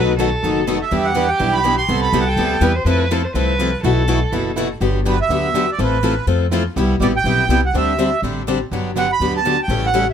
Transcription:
Already playing: upright bass B1, steel-string acoustic guitar B2 D#3 F#3 A3 B3 D#4 F#4 A4, violin B4
0.17 steel-string acoustic guitar B2 D#3 F#3 A3 B3 D#4 F#4 A4, violin A4
0.42 upright bass F#1, steel-string acoustic guitar B2 D#3 F#3 A3 B3 D#4 F#4 A4
0.67 steel-string acoustic guitar B2 D#3 F#3 A3 B3 D#4 F#4 A4
0.82 accordion E5
0.91 upright bass E2, steel-string acoustic guitar E3 G3 B3 D4 E4 G4 B4, violin G4
1.05 accordion F#5
1.15 steel-string acoustic guitar E3 G3 B3 D4 E4 G4 B4
1.28 accordion G5
1.40 upright bass B1, steel-string acoustic guitar E3 G3 B3 D4 E4 G4 B4
1.53 accordion B5
1.64 steel-string acoustic guitar E3 G3 B3 D4 E4 G4 B4
1.77 accordion C6
1.89 upright bass C2, steel-string acoustic guitar C3 G3 B3 E4 G4, violin A4
2.02 accordion B5
2.13 upright bass C2, steel-string acoustic guitar C3 G3 B3 E4 G4
2.20 accordion F#5
2.27 accordion G5
2.37 upright bass D2, steel-string acoustic guitar C3 G3 B3 E4 G4
2.61 upright bass E2, steel-string acoustic guitar C3 G3 B3 E4 G4, violin B4
2.75 violin C5
2.85 upright bass F2, steel-string acoustic guitar F3 A3 C4 E4 A4, violin B4
3.11 steel-string acoustic guitar F3 A3 C4 E4 A4, violin A4
3.24 violin C5
3.34 upright bass C2, steel-string acoustic guitar F3 A3 C4 E4 A4, violin B4
3.59 steel-string acoustic guitar F3 A3 C4 E4 A4
3.83 upright bass B1, steel-string acoustic guitar B2 E3 A3 E4 F#4 B4, violin A4
4.08 steel-string acoustic guitar B2 E3 A3 E4 F#4 B4
4.32 upright bass F#1, steel-string acoustic guitar B2 E3 A3 E4 F#4 B4
4.56 steel-string acoustic guitar B2 E3 A3 E4 F#4 B4
4.80 upright bass G1, steel-string acoustic guitar D3 F#3 B3 D4 G4
5.05 steel-string acoustic guitar D3 F#3 B3 D4 G4, accordion B4
5.22 accordion E5
5.29 upright bass D2, steel-string acoustic guitar D3 F#3 B3 D4 G4
5.54 steel-string acoustic guitar D3 F#3 B3 D4 G4
5.72 accordion D5
5.78 upright bass A1, steel-string acoustic guitar E3 A3 C4 F4 A4
5.82 accordion B4
6.02 steel-string acoustic guitar E3 F3 A3 C4 E4 F4 A4
6.27 upright bass F2, steel-string acoustic guitar E3 A3 C4 F4 A4
6.51 steel-string acoustic guitar E3 F3 A3 C4 E4 F4 A4
6.76 upright bass C2, steel-string acoustic guitar C3 G3 B3 E4 G4
7.00 upright bass A1, steel-string acoustic guitar C3 G3 B3 E4 G4, accordion D5
7.16 accordion G5
7.24 upright bass B1, steel-string acoustic guitar C3 G3 B3 E4 G4
7.49 upright bass C2, steel-string acoustic guitar C3 G3 B3 E4 G4
7.66 accordion F#5
7.74 upright bass D2, steel-string acoustic guitar D3 G3 C4 D4 G4, accordion E5
7.98 steel-string acoustic guitar D3 G3 C4 D4 G4
8.22 upright bass A1, steel-string acoustic guitar D3 G3 C4 D4 G4
8.47 steel-string acoustic guitar D3 G3 C4 D4 G4
8.71 upright bass G1, steel-string acoustic guitar D3 F#3 B3 D4 G4
8.96 steel-string acoustic guitar D3 F#3 B3 D4 G4, accordion F#5
9.12 accordion B5
9.20 upright bass D2, steel-string acoustic guitar D3 F#3 B3 D4 G4
9.37 accordion A5
9.46 steel-string acoustic guitar D3 F#3 B3 D4 G4
9.63 accordion G5
9.68 upright bass A1, steel-string acoustic guitar C#3 E3 G3 A3 C#4 E4 G4 A4
9.86 accordion F#5
9.94 steel-string acoustic guitar C#3 E3 G3 A3 C#4 E4 G4 A4

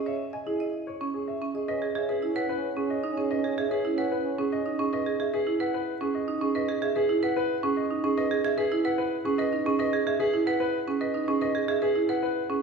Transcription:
Already playing: grand piano G#4, marimba D#5
0.06 marimba C#5, grand piano E5
0.33 marimba D#5, grand piano G#5
0.47 marimba E4, grand piano G#4
0.60 marimba D#5
0.87 grand piano C#5
1.01 marimba C#4
1.14 grand piano G#4
1.28 grand piano E5
1.42 marimba C#4
1.55 grand piano G#4, marimba D#5
1.68 french horn C#4, marimba B4, grand piano D#5
1.82 marimba G#4
1.95 french horn C#4, marimba G#4, grand piano E5
2.09 grand piano G#4, marimba B4
2.22 french horn C#4, marimba E4
2.36 marimba B4, grand piano F#5
2.49 grand piano B4
2.53 french horn C#4
2.77 marimba C#4, grand piano G#4
2.82 french horn C#4
2.90 grand piano D#5
3.04 marimba D#4
3.10 french horn C#4
3.17 marimba C#4, grand piano G#4
3.31 marimba B4, grand piano D#5
3.38 french horn C#4
3.44 marimba G#4
3.58 marimba G#4, grand piano E5
3.66 french horn C#4
3.71 grand piano G#4, marimba B4
3.85 marimba E4
3.95 french horn C#4, marimba B4, grand piano F#5
4.12 grand piano B4
4.23 french horn C#4
4.38 marimba C#4, grand piano G#4
4.51 french horn C#4, grand piano D#5
4.66 marimba D#4
4.79 marimba C#4, grand piano G#4
4.93 marimba B4, grand piano D#5
5.06 marimba G#4
5.20 marimba G#4, grand piano E5
5.34 grand piano G#4, marimba B4
5.47 marimba E4
5.60 marimba B4, grand piano F#5
5.74 grand piano B4
6.01 marimba C#4, grand piano G#4
6.15 grand piano D#5
6.28 marimba D#4
6.41 marimba C#4, grand piano G#4
6.55 marimba B4, grand piano D#5
6.69 marimba G#4
6.82 marimba G#4, grand piano E5
6.96 grand piano G#4, marimba B4
7.09 marimba E4
7.23 marimba B4, grand piano F#5
7.36 grand piano B4
7.63 marimba C#4, grand piano G#4
7.77 grand piano D#5
7.91 marimba D#4
8.04 marimba C#4, grand piano G#4
8.18 marimba B4, grand piano D#5
8.31 marimba G#4
8.44 marimba G#4, grand piano E5
8.58 grand piano G#4, marimba B4
8.72 marimba E4
8.85 marimba B4, grand piano F#5
8.98 grand piano B4
9.25 marimba C#4, grand piano G#4
9.38 marimba B4, grand piano D#5
9.53 marimba D#4
9.65 marimba C#4, grand piano G#4
9.79 marimba B4, grand piano D#5
9.93 marimba G#4
10.06 marimba G#4, grand piano E5
10.20 grand piano G#4, marimba B4
10.34 marimba E4
10.47 marimba B4, grand piano F#5
10.60 grand piano B4
10.87 marimba C#4, grand piano G#4
11.01 marimba B4, grand piano D#5
11.14 marimba D#4
11.28 marimba C#4, grand piano G#4
11.41 marimba B4, grand piano D#5
11.55 marimba G#4
11.68 marimba G#4, grand piano E5
11.82 grand piano G#4, marimba B4
11.95 marimba E4
12.09 marimba B4, grand piano F#5
12.23 grand piano B4
12.50 marimba C#4, grand piano G#4

